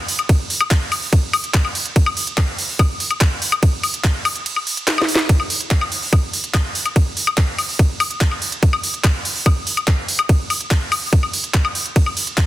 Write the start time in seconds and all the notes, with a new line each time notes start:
0.08 open hi-hat
0.19 closed hi-hat, high woodblock
0.29 kick, closed hi-hat, ride
0.50 open hi-hat
0.61 closed hi-hat, high woodblock
0.71 kick, clap, closed hi-hat, ride
0.92 open hi-hat, high woodblock
1.02 open hi-hat
1.13 kick, closed hi-hat, ride
1.33 open hi-hat, high woodblock
1.44 closed hi-hat
1.54 kick, clap, closed hi-hat, ride
1.65 high woodblock
1.75 open hi-hat
1.86 closed hi-hat
1.96 kick, closed hi-hat, ride
2.06 high woodblock
2.17 open hi-hat
2.27 closed hi-hat
2.38 kick, clap, closed hi-hat, ride, high woodblock
2.58 open hi-hat
2.69 open hi-hat
2.79 kick, closed hi-hat, ride, high woodblock
3.00 open hi-hat
3.11 closed hi-hat, high woodblock
3.21 kick, clap, closed hi-hat, ride
3.42 open hi-hat
3.52 closed hi-hat, high woodblock
3.63 kick, closed hi-hat, ride
3.83 open hi-hat, high woodblock
3.94 closed hi-hat
4.04 kick, clap, closed hi-hat, ride
4.25 open hi-hat, high woodblock
4.36 closed hi-hat
4.46 closed hi-hat, ride
4.56 high woodblock
4.67 open hi-hat
4.77 closed hi-hat
4.88 snare, clap, closed hi-hat, ride
4.98 snare, high woodblock
5.08 open hi-hat
5.15 snare, closed hi-hat
5.29 kick, closed hi-hat, ride
5.40 high woodblock
5.50 open hi-hat
5.61 closed hi-hat
5.71 kick, clap, closed hi-hat, ride
5.81 high woodblock
5.92 open hi-hat
6.02 open hi-hat
6.13 kick, ride, high woodblock
6.33 open hi-hat
6.44 closed hi-hat
6.54 kick, clap, closed hi-hat, ride, high woodblock
6.75 open hi-hat
6.86 closed hi-hat, high woodblock
6.96 kick, closed hi-hat, ride
7.17 open hi-hat
7.27 closed hi-hat, high woodblock
7.38 kick, clap, closed hi-hat, ride
7.58 open hi-hat, high woodblock
7.69 open hi-hat
7.79 kick, closed hi-hat, ride
8.00 open hi-hat, high woodblock
8.11 closed hi-hat
8.21 kick, clap, closed hi-hat, ride
8.31 high woodblock
8.42 open hi-hat
8.52 closed hi-hat
8.63 kick, closed hi-hat, ride
8.73 high woodblock
8.83 open hi-hat
8.94 closed hi-hat
9.04 kick, clap, closed hi-hat, ride, high woodblock
9.25 open hi-hat
9.36 open hi-hat
9.46 kick, closed hi-hat, ride, high woodblock
9.67 open hi-hat
9.77 closed hi-hat, high woodblock
9.88 kick, clap, closed hi-hat, ride
10.08 open hi-hat
10.19 closed hi-hat, high woodblock
10.29 kick, closed hi-hat, ride
10.50 open hi-hat, high woodblock
10.61 closed hi-hat
10.71 kick, clap, closed hi-hat, ride
10.92 open hi-hat, high woodblock
11.02 open hi-hat
11.13 kick, closed hi-hat, ride
11.23 high woodblock
11.33 open hi-hat
11.44 closed hi-hat
11.54 kick, clap, closed hi-hat, ride
11.65 high woodblock
11.75 open hi-hat
11.86 closed hi-hat
11.96 kick, closed hi-hat, ride
12.06 high woodblock
12.17 open hi-hat
12.27 closed hi-hat
12.38 kick, clap, closed hi-hat, ride